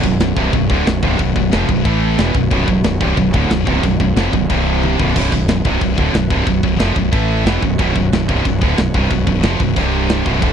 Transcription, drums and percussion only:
0.03 kick loud
0.20 snare loud
0.20 crash medium
0.37 kick loud
0.53 kick medium
0.53 crash medium
0.70 kick loud
0.86 snare loud
0.86 crash medium
1.03 kick loud
1.19 kick loud
1.19 crash medium
1.36 kick loud
1.52 snare loud
1.52 crash medium
1.69 kick medium
1.85 kick loud
1.85 crash medium
2.18 snare loud
2.18 crash medium
2.35 kick medium
2.51 kick loud
2.51 crash medium
2.68 kick loud
2.84 snare loud
2.84 crash medium
3.01 kick loud
3.17 kick loud
3.17 crash medium
3.34 kick loud
3.50 snare loud
3.50 crash medium
3.67 kick loud
3.83 kick medium
3.83 crash medium
4.00 kick loud
4.16 snare loud
4.16 crash medium
4.33 kick medium
4.50 kick loud
4.50 crash medium
4.83 high tom medium
5.00 kick medium
5.16 kick loud
5.16 crash loud
5.16 crash medium
5.32 kick medium
5.48 snare loud
5.48 crash medium
5.65 kick loud
5.81 kick loud
5.81 crash medium
5.98 kick loud
6.14 snare loud
6.14 crash medium
6.30 kick loud
6.47 kick loud
6.47 crash medium
6.63 kick medium
6.79 snare loud
6.79 crash medium
6.96 kick loud
7.13 kick loud
7.13 crash medium
7.46 snare loud
7.46 crash medium
7.62 kick loud
7.79 kick loud
7.79 crash medium
7.96 kick loud
8.13 snare loud
8.13 crash medium
8.29 kick loud
8.45 kick loud
8.45 crash medium
8.62 kick loud
8.77 snare loud
8.77 crash medium
8.94 kick loud
9.10 kick medium
9.10 crash medium
9.27 kick loud
9.43 snare loud
9.43 crash medium
9.60 kick medium
9.76 kick loud
9.76 crash medium
10.09 snare loud
10.09 crash medium
10.26 kick loud
10.42 kick loud
10.42 crash medium

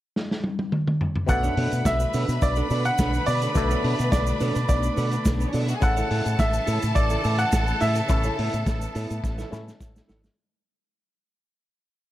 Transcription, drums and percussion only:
0.16 snare medium
0.31 snare medium
0.44 high tom medium
0.59 high tom medium
0.72 mid tom medium
0.88 mid tom medium
1.01 floor tom loud
1.16 floor tom medium
1.28 kick loud
1.28 closed hi-hat medium
1.28 shaker medium
1.44 shaker soft
1.57 open hi-hat medium
1.72 closed hi-hat medium
1.72 shaker medium
1.85 kick medium
1.85 snare loud
1.85 closed hi-hat medium
1.85 shaker medium
2.00 shaker medium
2.13 open hi-hat medium
2.13 shaker medium
2.29 closed hi-hat soft
2.29 shaker medium
2.42 kick loud
2.42 closed hi-hat medium
2.42 shaker medium
2.56 shaker medium
2.70 open hi-hat medium
2.70 shaker soft
2.85 closed hi-hat soft
2.85 shaker soft
2.98 kick medium
2.98 snare loud
2.98 closed hi-hat medium
2.98 shaker medium
3.14 shaker medium
3.26 open hi-hat medium
3.26 shaker medium
3.41 closed hi-hat medium
3.41 shaker soft
3.55 kick loud
3.55 closed hi-hat medium
3.55 shaker medium
3.71 shaker soft
3.84 open hi-hat medium
3.99 closed hi-hat medium
3.99 shaker medium
4.12 kick loud
4.12 snare medium
4.12 closed hi-hat medium
4.12 shaker medium
4.27 shaker medium
4.40 open hi-hat medium
4.40 shaker medium
4.55 closed hi-hat soft
4.55 shaker medium
4.69 kick loud
4.69 closed hi-hat medium
4.69 shaker medium
4.83 shaker medium
4.97 open hi-hat medium
4.97 shaker medium
5.12 closed hi-hat medium
5.12 shaker soft
5.25 kick loud
5.25 snare loud
5.25 closed hi-hat medium
5.25 shaker loud
5.40 shaker medium
5.53 open hi-hat medium
5.53 shaker soft
5.68 closed hi-hat medium
5.68 shaker soft
5.82 kick loud
5.82 closed hi-hat medium
5.82 shaker medium
5.97 shaker soft
6.11 open hi-hat medium
6.26 closed hi-hat soft
6.26 shaker medium
6.39 kick loud
6.39 snare loud
6.39 closed hi-hat medium
6.39 shaker medium
6.53 shaker medium
6.67 open hi-hat medium
6.67 shaker medium
6.82 closed hi-hat soft
6.82 shaker medium
6.96 kick loud
6.96 closed hi-hat medium
6.96 shaker medium
7.10 shaker medium
7.24 open hi-hat medium
7.24 shaker medium
7.38 closed hi-hat medium
7.38 shaker soft
7.52 kick loud
7.52 snare loud
7.52 closed hi-hat medium
7.52 shaker loud
7.67 shaker medium
7.80 open hi-hat medium
7.80 shaker soft
7.95 closed hi-hat medium
7.95 shaker soft
8.09 kick loud
8.09 closed hi-hat medium
8.09 shaker medium
8.23 shaker soft
8.39 open hi-hat medium
8.53 closed hi-hat medium
8.53 shaker medium
8.66 kick loud
8.66 snare loud
8.66 closed hi-hat medium
8.66 shaker medium
8.81 shaker medium
8.95 open hi-hat medium
8.95 shaker medium
9.10 closed hi-hat soft
9.10 shaker medium
9.24 kick medium
9.24 snare soft
9.24 shaker medium
9.39 snare soft
9.39 shaker medium
9.53 snare medium
9.53 shaker medium
9.68 snare medium
9.68 shaker soft
9.81 kick loud
9.81 snare medium
9.81 shaker loud
9.96 snare medium
9.96 shaker medium
10.09 snare loud
10.09 shaker soft
10.24 snare medium
10.24 shaker medium

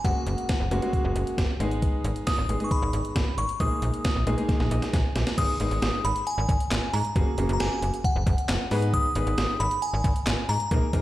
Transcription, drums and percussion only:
0.04 kick loud
0.04 closed hi-hat medium
0.27 closed hi-hat medium
0.38 closed hi-hat soft
0.49 kick loud
0.49 snare loud
0.49 closed hi-hat medium
0.71 closed hi-hat medium
0.82 closed hi-hat soft
0.93 kick loud
0.93 closed hi-hat medium
1.16 closed hi-hat medium
1.27 closed hi-hat medium
1.38 kick loud
1.38 snare loud
1.38 closed hi-hat medium
1.60 closed hi-hat medium
1.71 closed hi-hat soft
1.82 kick loud
1.82 closed hi-hat medium
2.04 closed hi-hat medium
2.16 closed hi-hat soft
2.27 kick loud
2.27 snare loud
2.27 closed hi-hat medium
2.49 closed hi-hat medium
2.60 closed hi-hat soft
2.71 kick loud
2.71 closed hi-hat medium
2.93 closed hi-hat medium
3.05 closed hi-hat medium
3.16 kick loud
3.16 snare loud
3.16 closed hi-hat medium
3.38 closed hi-hat medium
3.49 closed hi-hat soft
3.60 kick loud
3.60 closed hi-hat medium
3.82 closed hi-hat medium
3.94 closed hi-hat medium
4.04 kick loud
4.04 snare loud
4.04 closed hi-hat medium
4.27 closed hi-hat medium
4.38 closed hi-hat medium
4.49 kick loud
4.49 snare medium
4.49 closed hi-hat medium
4.60 snare medium
4.71 closed hi-hat medium
4.82 snare medium
4.82 closed hi-hat medium
4.93 kick loud
4.93 snare medium
4.93 closed hi-hat medium
5.16 snare medium
5.16 closed hi-hat medium
5.27 snare medium
5.27 closed hi-hat soft
5.38 kick loud
5.38 closed hi-hat medium
5.38 crash loud
5.60 closed hi-hat medium
5.71 closed hi-hat medium
5.82 snare loud
5.82 closed hi-hat medium
6.05 closed hi-hat medium
6.16 closed hi-hat medium
6.27 closed hi-hat medium
6.49 kick medium
6.49 closed hi-hat medium
6.60 closed hi-hat medium
6.71 snare loud
6.71 clap loud
6.71 closed hi-hat medium
6.93 open hi-hat medium
7.05 closed hi-hat soft
7.16 kick loud
7.16 closed hi-hat medium
7.38 closed hi-hat medium
7.49 closed hi-hat medium
7.60 snare loud
7.60 closed hi-hat medium
7.82 closed hi-hat medium
7.94 closed hi-hat medium
8.04 kick medium
8.04 closed hi-hat medium
8.27 kick loud
8.27 closed hi-hat medium
8.38 closed hi-hat medium
8.49 snare loud
8.49 clap loud
8.49 closed hi-hat medium
8.71 open hi-hat medium
8.82 closed hi-hat medium
8.93 kick loud
8.93 closed hi-hat medium
9.15 closed hi-hat medium
9.27 closed hi-hat soft
9.38 snare loud
9.38 closed hi-hat medium
9.60 closed hi-hat medium
9.71 closed hi-hat medium
9.82 closed hi-hat medium
10.04 kick loud
10.04 closed hi-hat medium
10.16 closed hi-hat medium
10.27 snare loud
10.27 clap loud
10.27 closed hi-hat medium
10.49 open hi-hat medium
10.60 closed hi-hat soft
10.71 kick loud
10.71 closed hi-hat medium
10.93 kick medium
10.93 closed hi-hat medium

